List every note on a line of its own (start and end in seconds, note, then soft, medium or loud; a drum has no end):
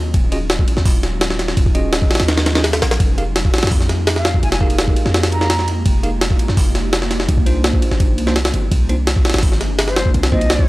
0.00 0.13 D#2 medium
0.14 0.66 D#1 loud
0.14 kick loud
0.14 ride medium
0.32 0.37 C#4 medium
0.32 0.37 F4 medium
0.32 0.37 F#4 medium
0.32 0.37 G#4 medium
0.32 0.37 D#5 medium
0.32 ride medium
0.50 snare loud
0.50 ride medium
0.59 kick loud
0.68 1.55 F#3 medium
0.68 1.55 G#3 medium
0.68 1.55 C#4 medium
0.68 1.55 D#4 medium
0.68 1.55 F4 loud
0.68 ride medium
0.77 0.85 D#2 medium
0.77 snare soft
0.85 1.56 D#1 loud
0.85 kick loud
0.85 open hi-hat medium
1.03 snare soft
1.03 ride medium
1.21 snare loud
1.21 ride medium
1.30 snare medium
1.39 snare medium
1.39 ride medium
1.48 snare medium
1.57 2.09 D#1 loud
1.57 kick loud
1.57 ride medium
1.66 kick loud
1.75 2.53 C#4 medium
1.75 2.53 F4 medium
1.75 2.53 F#4 medium
1.75 2.53 G#4 medium
1.75 2.53 D#5 medium
1.75 ride medium
1.93 snare loud
1.93 ride medium
2.02 kick loud
2.11 snare medium
2.11 ride medium
2.15 snare medium
2.15 ride medium
2.20 2.82 D#2 medium
2.20 snare loud
2.20 ride medium
2.28 snare loud
2.28 ride medium
2.38 snare loud
2.38 ride medium
2.46 snare loud
2.46 ride medium
2.55 2.61 C#4 medium
2.55 2.61 F4 medium
2.55 2.61 F#4 medium
2.55 2.61 G#4 medium
2.55 2.61 D#5 medium
2.55 snare loud
2.55 ride medium
2.64 snare loud
2.64 ride medium
2.73 snare loud
2.73 ride medium
2.82 2.98 A#1 medium
2.82 snare loud
2.82 ride medium
2.91 snare loud
2.91 ride medium
3.00 3.52 F1 loud
3.00 kick loud
3.00 ride medium
3.18 3.23 D#4 medium
3.18 3.23 G4 medium
3.18 3.23 G#4 medium
3.18 3.23 A#4 medium
3.18 3.23 F5 medium
3.18 ride medium
3.36 snare loud
3.36 ride medium
3.45 kick loud
3.53 4.41 G#3 medium
3.53 4.41 A#3 medium
3.53 4.41 D#4 medium
3.53 4.41 F4 medium
3.53 4.41 G4 loud
3.53 snare medium
3.53 ride medium
3.58 snare medium
3.58 ride medium
3.63 4.42 F2 medium
3.63 snare medium
3.63 ride medium
3.67 snare medium
3.67 ride medium
3.71 kick loud
3.71 open hi-hat medium
3.81 snare soft
3.89 snare soft
3.89 ride medium
4.07 snare loud
4.07 ride medium
4.16 4.38 F5 medium
4.16 snare medium
4.25 snare loud
4.25 ride medium
4.34 kick medium
4.43 4.95 F1 loud
4.43 4.49 G#5 medium
4.43 ride medium
4.52 4.58 G#5 medium
4.52 snare loud
4.52 ride medium
4.61 5.39 D#4 medium
4.61 5.39 G4 medium
4.61 5.39 G#4 medium
4.61 5.39 A#4 medium
4.61 5.39 F5 medium
4.61 kick medium
4.70 ride medium
4.79 snare loud
4.79 ride loud
4.88 kick loud
4.96 ride medium
5.06 5.84 F2 medium
5.06 snare soft
5.14 snare loud
5.14 ride medium
5.23 snare loud
5.23 ride medium
5.32 5.68 A#5 loud
5.32 ride medium
5.41 5.46 D#4 medium
5.41 5.46 G4 medium
5.41 5.46 G#4 medium
5.41 5.46 A#4 medium
5.41 5.46 F5 loud
5.41 snare medium
5.50 snare loud
5.50 ride medium
5.59 snare soft
5.68 ride medium
5.86 6.38 F1 loud
5.86 kick loud
5.86 ride medium
6.03 6.09 D#4 medium
6.03 6.09 G4 medium
6.03 6.09 G#4 medium
6.03 6.09 A#4 medium
6.03 6.09 F5 medium
6.03 ride medium
6.21 snare loud
6.21 ride medium
6.31 kick loud
6.39 7.26 G#3 medium
6.39 7.27 A#3 medium
6.39 7.26 D#4 medium
6.39 7.27 F4 medium
6.39 7.27 G4 loud
6.39 ride medium
6.48 6.56 F2 medium
6.48 snare soft
6.57 7.27 F1 loud
6.57 kick loud
6.57 open hi-hat medium
6.75 snare soft
6.75 ride medium
6.93 snare loud
6.93 ride medium
7.02 snare medium
7.11 snare medium
7.11 ride medium
7.20 snare medium
7.29 7.81 C2 loud
7.29 kick loud
7.29 ride medium
7.38 kick loud
7.46 8.25 A#3 medium
7.46 8.25 D4 medium
7.46 8.25 D#4 medium
7.46 8.25 F4 medium
7.46 8.25 C5 medium
7.46 ride medium
7.64 snare loud
7.64 ride medium
7.73 kick loud
7.82 ride medium
7.91 8.19 G1 medium
7.91 snare soft
8.00 kick loud
8.00 ride medium
8.18 8.52 C2 loud
8.18 ride medium
8.27 8.35 A#3 medium
8.27 8.35 D4 medium
8.27 8.35 D#4 medium
8.27 8.35 F4 medium
8.27 8.35 C5 loud
8.27 snare medium
8.36 snare loud
8.36 ride medium
8.45 snare loud
8.45 ride medium
8.54 8.70 G1 medium
8.54 ride medium
8.71 9.24 C2 loud
8.71 kick loud
8.71 ride medium
8.89 8.95 A#3 medium
8.89 8.95 D4 medium
8.89 8.95 D#4 medium
8.89 8.95 F4 medium
8.89 8.95 C5 medium
8.89 ride medium
9.07 snare loud
9.07 ride medium
9.16 kick loud
9.25 10.12 D#3 medium
9.25 10.12 F3 medium
9.25 10.12 A#3 medium
9.25 10.12 C4 medium
9.25 10.12 D4 loud
9.25 snare medium
9.25 ride medium
9.30 snare medium
9.30 ride medium
9.34 10.13 G1 medium
9.34 snare loud
9.34 ride medium
9.38 snare medium
9.38 ride medium
9.43 kick loud
9.43 open hi-hat medium
9.52 snare soft
9.61 snare soft
9.61 ride medium
9.79 snare loud
9.79 ride medium
9.88 10.09 C5 loud
9.88 snare medium
9.96 snare loud
9.96 ride medium
10.06 kick medium
10.14 10.67 C2 loud
10.14 ride medium
10.23 snare loud
10.23 ride medium
10.32 10.69 A#3 medium
10.32 10.69 C4 medium
10.32 10.69 D#4 medium
10.32 10.69 F4 medium
10.32 10.69 C5 medium
10.32 10.69 D#5 loud
10.32 kick medium
10.41 ride medium
10.50 snare loud
10.50 ride medium
10.59 kick loud